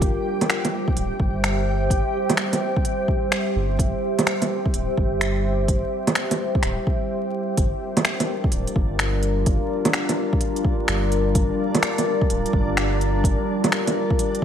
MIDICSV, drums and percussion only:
0, 0, Header, 1, 2, 480
1, 0, Start_track
1, 0, Tempo, 472441
1, 17, Time_signature, 4, 2, 24, 8
1, 14678, End_track
2, 0, Start_track
2, 0, Title_t, "Drums"
2, 16, Note_on_c, 9, 36, 118
2, 20, Note_on_c, 9, 42, 51
2, 118, Note_off_c, 9, 36, 0
2, 122, Note_off_c, 9, 42, 0
2, 420, Note_on_c, 9, 42, 52
2, 420, Note_on_c, 9, 61, 48
2, 504, Note_off_c, 9, 42, 0
2, 504, Note_on_c, 9, 26, 101
2, 504, Note_on_c, 9, 42, 52
2, 522, Note_off_c, 9, 61, 0
2, 606, Note_off_c, 9, 26, 0
2, 606, Note_off_c, 9, 42, 0
2, 657, Note_on_c, 9, 42, 53
2, 657, Note_on_c, 9, 61, 50
2, 759, Note_off_c, 9, 42, 0
2, 759, Note_off_c, 9, 61, 0
2, 891, Note_on_c, 9, 36, 105
2, 982, Note_on_c, 9, 42, 51
2, 993, Note_off_c, 9, 36, 0
2, 1084, Note_off_c, 9, 42, 0
2, 1215, Note_on_c, 9, 36, 98
2, 1316, Note_off_c, 9, 36, 0
2, 1460, Note_on_c, 9, 26, 100
2, 1460, Note_on_c, 9, 42, 52
2, 1562, Note_off_c, 9, 26, 0
2, 1562, Note_off_c, 9, 42, 0
2, 1934, Note_on_c, 9, 36, 110
2, 1940, Note_on_c, 9, 42, 53
2, 2035, Note_off_c, 9, 36, 0
2, 2041, Note_off_c, 9, 42, 0
2, 2333, Note_on_c, 9, 42, 54
2, 2333, Note_on_c, 9, 61, 52
2, 2411, Note_off_c, 9, 42, 0
2, 2411, Note_on_c, 9, 26, 100
2, 2411, Note_on_c, 9, 42, 52
2, 2434, Note_off_c, 9, 61, 0
2, 2513, Note_off_c, 9, 26, 0
2, 2513, Note_off_c, 9, 42, 0
2, 2570, Note_on_c, 9, 42, 53
2, 2570, Note_on_c, 9, 61, 52
2, 2672, Note_off_c, 9, 42, 0
2, 2672, Note_off_c, 9, 61, 0
2, 2809, Note_on_c, 9, 36, 96
2, 2894, Note_on_c, 9, 42, 51
2, 2910, Note_off_c, 9, 36, 0
2, 2995, Note_off_c, 9, 42, 0
2, 3131, Note_on_c, 9, 36, 93
2, 3232, Note_off_c, 9, 36, 0
2, 3371, Note_on_c, 9, 26, 100
2, 3371, Note_on_c, 9, 42, 52
2, 3472, Note_off_c, 9, 26, 0
2, 3472, Note_off_c, 9, 42, 0
2, 3850, Note_on_c, 9, 36, 110
2, 3856, Note_on_c, 9, 42, 51
2, 3952, Note_off_c, 9, 36, 0
2, 3958, Note_off_c, 9, 42, 0
2, 4254, Note_on_c, 9, 42, 53
2, 4254, Note_on_c, 9, 61, 54
2, 4337, Note_off_c, 9, 42, 0
2, 4337, Note_on_c, 9, 26, 96
2, 4337, Note_on_c, 9, 42, 53
2, 4355, Note_off_c, 9, 61, 0
2, 4438, Note_off_c, 9, 26, 0
2, 4438, Note_off_c, 9, 42, 0
2, 4489, Note_on_c, 9, 42, 52
2, 4489, Note_on_c, 9, 61, 53
2, 4590, Note_off_c, 9, 42, 0
2, 4590, Note_off_c, 9, 61, 0
2, 4730, Note_on_c, 9, 36, 98
2, 4814, Note_on_c, 9, 42, 54
2, 4831, Note_off_c, 9, 36, 0
2, 4915, Note_off_c, 9, 42, 0
2, 5054, Note_on_c, 9, 36, 93
2, 5155, Note_off_c, 9, 36, 0
2, 5294, Note_on_c, 9, 26, 100
2, 5294, Note_on_c, 9, 42, 54
2, 5395, Note_off_c, 9, 26, 0
2, 5395, Note_off_c, 9, 42, 0
2, 5774, Note_on_c, 9, 36, 113
2, 5776, Note_on_c, 9, 42, 55
2, 5875, Note_off_c, 9, 36, 0
2, 5877, Note_off_c, 9, 42, 0
2, 6171, Note_on_c, 9, 42, 55
2, 6171, Note_on_c, 9, 61, 55
2, 6252, Note_off_c, 9, 42, 0
2, 6252, Note_on_c, 9, 26, 96
2, 6252, Note_on_c, 9, 42, 56
2, 6272, Note_off_c, 9, 61, 0
2, 6354, Note_off_c, 9, 26, 0
2, 6354, Note_off_c, 9, 42, 0
2, 6412, Note_on_c, 9, 42, 56
2, 6412, Note_on_c, 9, 61, 52
2, 6513, Note_off_c, 9, 42, 0
2, 6513, Note_off_c, 9, 61, 0
2, 6654, Note_on_c, 9, 36, 101
2, 6732, Note_on_c, 9, 26, 58
2, 6732, Note_on_c, 9, 42, 54
2, 6756, Note_off_c, 9, 36, 0
2, 6834, Note_off_c, 9, 26, 0
2, 6834, Note_off_c, 9, 42, 0
2, 6978, Note_on_c, 9, 36, 96
2, 7079, Note_off_c, 9, 36, 0
2, 7696, Note_on_c, 9, 42, 57
2, 7697, Note_on_c, 9, 36, 116
2, 7798, Note_off_c, 9, 36, 0
2, 7798, Note_off_c, 9, 42, 0
2, 8095, Note_on_c, 9, 42, 58
2, 8095, Note_on_c, 9, 61, 55
2, 8176, Note_off_c, 9, 42, 0
2, 8176, Note_on_c, 9, 26, 105
2, 8176, Note_on_c, 9, 42, 60
2, 8197, Note_off_c, 9, 61, 0
2, 8277, Note_off_c, 9, 26, 0
2, 8277, Note_off_c, 9, 42, 0
2, 8332, Note_on_c, 9, 42, 58
2, 8332, Note_on_c, 9, 61, 56
2, 8434, Note_off_c, 9, 42, 0
2, 8434, Note_off_c, 9, 61, 0
2, 8575, Note_on_c, 9, 36, 104
2, 8653, Note_on_c, 9, 42, 57
2, 8676, Note_off_c, 9, 36, 0
2, 8755, Note_off_c, 9, 42, 0
2, 8812, Note_on_c, 9, 42, 33
2, 8897, Note_on_c, 9, 36, 101
2, 8914, Note_off_c, 9, 42, 0
2, 8998, Note_off_c, 9, 36, 0
2, 9134, Note_on_c, 9, 26, 106
2, 9134, Note_on_c, 9, 42, 59
2, 9236, Note_off_c, 9, 26, 0
2, 9236, Note_off_c, 9, 42, 0
2, 9374, Note_on_c, 9, 42, 32
2, 9476, Note_off_c, 9, 42, 0
2, 9615, Note_on_c, 9, 42, 59
2, 9616, Note_on_c, 9, 36, 126
2, 9716, Note_off_c, 9, 42, 0
2, 9718, Note_off_c, 9, 36, 0
2, 10009, Note_on_c, 9, 42, 59
2, 10009, Note_on_c, 9, 61, 54
2, 10093, Note_off_c, 9, 42, 0
2, 10093, Note_on_c, 9, 26, 111
2, 10093, Note_on_c, 9, 42, 57
2, 10111, Note_off_c, 9, 61, 0
2, 10195, Note_off_c, 9, 26, 0
2, 10195, Note_off_c, 9, 42, 0
2, 10252, Note_on_c, 9, 42, 60
2, 10252, Note_on_c, 9, 61, 54
2, 10353, Note_off_c, 9, 42, 0
2, 10353, Note_off_c, 9, 61, 0
2, 10493, Note_on_c, 9, 36, 113
2, 10573, Note_on_c, 9, 42, 55
2, 10594, Note_off_c, 9, 36, 0
2, 10674, Note_off_c, 9, 42, 0
2, 10732, Note_on_c, 9, 42, 32
2, 10815, Note_on_c, 9, 36, 104
2, 10834, Note_off_c, 9, 42, 0
2, 10917, Note_off_c, 9, 36, 0
2, 11053, Note_on_c, 9, 26, 112
2, 11053, Note_on_c, 9, 42, 58
2, 11155, Note_off_c, 9, 26, 0
2, 11155, Note_off_c, 9, 42, 0
2, 11296, Note_on_c, 9, 42, 32
2, 11397, Note_off_c, 9, 42, 0
2, 11533, Note_on_c, 9, 36, 127
2, 11533, Note_on_c, 9, 42, 59
2, 11634, Note_off_c, 9, 42, 0
2, 11635, Note_off_c, 9, 36, 0
2, 11934, Note_on_c, 9, 42, 59
2, 11934, Note_on_c, 9, 61, 52
2, 12015, Note_off_c, 9, 42, 0
2, 12015, Note_on_c, 9, 26, 109
2, 12015, Note_on_c, 9, 42, 57
2, 12035, Note_off_c, 9, 61, 0
2, 12117, Note_off_c, 9, 26, 0
2, 12117, Note_off_c, 9, 42, 0
2, 12174, Note_on_c, 9, 42, 59
2, 12174, Note_on_c, 9, 61, 51
2, 12276, Note_off_c, 9, 42, 0
2, 12276, Note_off_c, 9, 61, 0
2, 12409, Note_on_c, 9, 36, 109
2, 12496, Note_on_c, 9, 42, 57
2, 12511, Note_off_c, 9, 36, 0
2, 12598, Note_off_c, 9, 42, 0
2, 12656, Note_on_c, 9, 42, 31
2, 12733, Note_on_c, 9, 36, 106
2, 12758, Note_off_c, 9, 42, 0
2, 12834, Note_off_c, 9, 36, 0
2, 12976, Note_on_c, 9, 26, 111
2, 12976, Note_on_c, 9, 42, 58
2, 13077, Note_off_c, 9, 26, 0
2, 13077, Note_off_c, 9, 42, 0
2, 13221, Note_on_c, 9, 42, 32
2, 13322, Note_off_c, 9, 42, 0
2, 13452, Note_on_c, 9, 36, 121
2, 13461, Note_on_c, 9, 42, 55
2, 13553, Note_off_c, 9, 36, 0
2, 13563, Note_off_c, 9, 42, 0
2, 13859, Note_on_c, 9, 42, 57
2, 13859, Note_on_c, 9, 61, 53
2, 13941, Note_off_c, 9, 42, 0
2, 13941, Note_on_c, 9, 26, 109
2, 13941, Note_on_c, 9, 42, 56
2, 13960, Note_off_c, 9, 61, 0
2, 14042, Note_off_c, 9, 26, 0
2, 14042, Note_off_c, 9, 42, 0
2, 14096, Note_on_c, 9, 42, 57
2, 14096, Note_on_c, 9, 61, 51
2, 14197, Note_off_c, 9, 42, 0
2, 14197, Note_off_c, 9, 61, 0
2, 14329, Note_on_c, 9, 36, 107
2, 14418, Note_on_c, 9, 42, 55
2, 14431, Note_off_c, 9, 36, 0
2, 14519, Note_off_c, 9, 42, 0
2, 14576, Note_on_c, 9, 42, 29
2, 14678, Note_off_c, 9, 42, 0
2, 14678, End_track
0, 0, End_of_file